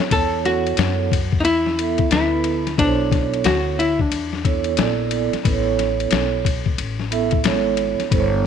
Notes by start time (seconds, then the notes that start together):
0.00 ride
0.10 E2 B3 E4 A4 C#5, kick, ride
0.45 F#4, snare, ride
0.67 ride
0.77 F#2, snare, hi-hat pedal, ride
1.12 kick, ride
1.32 kick
1.40 D#4
1.44 E2 E4, ride
1.66 snare
1.77 B3 E4 A4 E5, ride
1.98 kick, ride
2.10 D2 B3 E4 A4 B4, snare, hi-hat pedal, ride
2.44 ride
2.67 snare, ride
2.77 B1 B3 D4 E4 A4 C5, kick, ride
2.86 C#5
3.11 kick, snare, ride
3.34 ride
3.44 D2 F#4, snare, hi-hat pedal, ride
3.79 E4, ride
3.99 D4, kick
4.11 E2, ride
4.33 snare
4.44 B3 E4 A4 C#5, kick, ride
4.64 ride
4.77 A#1 B3 E4 A4 D5, snare, hi-hat pedal, ride
5.11 ride
5.32 muted upright bass stroke, snare, ride
5.44 A1 B3 E4 A4 B4, kick, ride
5.52 C#5
5.79 snare, ride
6.00 ride
6.11 B1, snare, hi-hat pedal, ride
6.45 kick, ride
6.66 kick
6.78 A1, ride
7.00 snare
7.11 B3 E4 A4 E5, ride
7.31 kick, ride
7.44 G#1 B3 E4 A4 C#5, snare, hi-hat pedal, ride
7.77 ride
7.99 muted upright bass stroke, snare, ride
8.11 G1 B3 E4 A4 C5, kick, ride
8.19 C#5